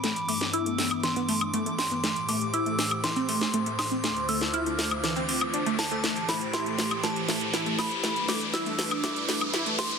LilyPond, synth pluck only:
\new Staff \with { instrumentName = "Synth pluck" } { \time 4/4 \key a \minor \tempo 4 = 120 a16 r16 a16 r16 e'16 a16 a16 r16 e16 b16 a16 r16 a16 a16 r16 b16 | a16 r16 a16 r16 e'16 a16 a16 r16 e16 c'16 a16 r16 a16 a16 r16 c'16 | a16 r16 a16 r16 e'16 a16 a16 r16 e16 c'16 c'16 r16 d'16 a16 r16 a16 | a16 r16 a16 r16 e'16 a16 a16 r16 a16 r16 a16 r16 e'16 a16 a16 r16 |
a16 r16 a16 r16 e'16 a16 a16 r16 a16 r16 a16 r16 e'16 a16 a16 r16 | }